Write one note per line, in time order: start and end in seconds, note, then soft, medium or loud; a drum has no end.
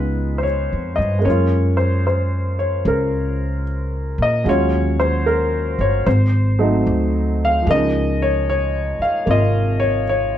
0.00 0.68 C#2 medium
0.00 1.17 G#3 soft
0.00 1.24 B3 soft
0.00 1.26 D#4 soft
0.00 1.28 F4 soft
0.00 0.43 B4 medium
0.38 0.44 C5 medium
0.43 0.99 C#5 medium
0.73 0.97 F2 soft
0.96 1.23 G2 medium
0.96 1.25 D#5 medium
1.19 4.43 G#3 soft
1.19 4.44 A#3 soft
1.25 2.82 F#2 medium
1.25 4.46 C#4 soft
1.25 1.75 C#5 medium
1.30 4.47 F4 soft
1.77 2.05 C5 medium
2.07 2.56 C5 medium
2.59 2.84 C#5 medium
2.85 4.14 C#2 medium
2.85 3.63 A#4 medium
4.18 4.44 A#2 medium
4.22 4.48 D#5 medium
4.44 5.75 D#2 medium
4.44 6.05 F#3 soft
4.44 6.05 G#3 soft
4.44 6.06 C#4 soft
4.49 6.07 F4 medium
4.49 4.97 C#5 medium
5.00 5.24 C5 medium
5.26 5.76 A#4 medium
5.79 6.04 G1 medium
5.79 6.05 C#5 medium
6.06 6.82 G#1 medium
6.06 6.82 C5 medium
6.59 7.66 F#3 medium
6.59 7.66 A3 soft
6.59 7.66 C4 soft
6.59 7.66 D#4 medium
6.86 7.62 D2 medium
7.45 7.69 F5 medium
7.62 10.38 F3 soft
7.62 10.38 G#3 soft
7.67 8.95 C#2 medium
7.67 9.24 A#3 soft
7.67 8.18 D#5 medium
7.73 10.38 D#4 soft
8.22 8.48 C#5 medium
8.49 9.02 C#5 medium
8.99 9.28 F5 medium
8.99 muted upright bass stroke soft
9.26 10.38 G#1 medium
9.26 10.38 C3 soft
9.26 10.38 A#3 soft
9.26 10.38 F4 soft
9.31 9.78 D#5 medium
9.80 10.04 C#5 medium
10.09 10.38 C#5 medium